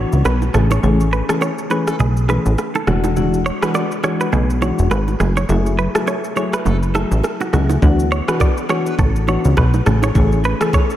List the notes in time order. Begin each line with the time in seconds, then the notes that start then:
Already playing: E3 B3 D4 F#4
0.12 C#2, shaker
0.25 B1 B4, cross-stick, high bongo, shaker
0.42 low bongo, shaker
0.54 A1 E3 A3 C#4 G#4 A4, cross-stick, high bongo, low conga, shaker
0.71 C#5, low bongo, shaker
0.83 A1 E3 A3 C#4 G#4, low conga, shaker
1.00 shaker
1.13 B4, shaker
1.29 E3 A3 C#4 G#4 A4, cross-stick, shaker
1.41 C#5, high bongo, shaker
1.58 shaker
1.70 E3 A3 C#4 G#4 B4, low bongo, shaker
1.87 A4, cross-stick, shaker
1.99 B1 G#4, low conga, shaker
2.17 shaker
2.28 E3 A3 C#4 G#4 B4, cross-stick, low bongo, shaker
2.46 A1, shaker
2.58 cross-stick, high bongo, shaker
2.75 A4, low bongo, shaker
2.87 E1 E3 G#3 D4 F#4, cross-stick, high bongo, low conga, shaker
3.04 low bongo, shaker
3.16 E3 G#3 D4 F#4, low conga, shaker
3.34 shaker
3.46 C#5, shaker
3.62 E3 G#3 D4 F#4 B4, cross-stick, shaker
3.74 D5, high bongo, shaker
3.92 shaker
4.03 E3 G#3 D4 F#4 C#5, cross-stick, low bongo, shaker
4.21 B4, shaker
4.32 B1 G#4, low conga, shaker
4.50 shaker
4.62 E3 G#3 D4 F#4 C#5, low bongo, shaker
4.79 E1, shaker
4.91 G#1 B4, cross-stick, high bongo, shaker
5.08 low bongo, shaker
5.20 F#1 G#4, cross-stick, high bongo, low conga, shaker
5.37 C#5, low bongo, shaker
5.49 F#1 F#3 A3 E4 G#4, low conga, shaker
5.66 shaker
5.78 B4, shaker
5.95 F#3 A3 E4 G#4 A4, cross-stick, shaker
6.07 C#5, high bongo, shaker
6.24 shaker
6.36 F#3 A3 E4 G#4 C#5, low bongo, shaker
6.53 B4, cross-stick, shaker
6.65 F#1 A4, low conga, shaker
6.83 shaker
6.95 F#3 A3 E4 G#4 A4, cross-stick, low bongo, shaker
7.11 A1, shaker
7.24 cross-stick, high bongo, shaker
7.41 F#4, low bongo, shaker
7.53 C#2 F#3 A3 E4 F#4 G#4, cross-stick, high bongo, low conga, shaker
7.69 low bongo, shaker
7.82 D2 E3 B3 D4 F#4, kick, low conga, shaker
7.99 shaker
8.12 C#5, shaker
8.28 E3 B3 D4 F#4 B4, cross-stick, shaker
8.40 D5, kick, high bongo, shaker
8.57 shaker
8.69 E3 B3 D4 F#4 C#5, cross-stick, low bongo, shaker
8.86 B4, shaker
8.98 A1 A4, kick, low conga, shaker
9.16 shaker
9.27 E3 B3 D4 F#4 C#5, low bongo, shaker
9.45 C#2, shaker
9.57 B1 B4, kick, cross-stick, high bongo, shaker
9.74 low bongo, shaker
9.86 A1 E3 A3 C#4 G#4 A4, cross-stick, high bongo, low conga, shaker
10.03 C#5, low bongo, shaker
10.15 A1 E3 A3 C#4 G#4, kick, low conga, shaker
10.32 shaker
10.44 B4, shaker
10.61 E3 A3 C#4 G#4 A4, cross-stick, shaker
10.73 C#5, kick, high bongo, shaker
10.90 shaker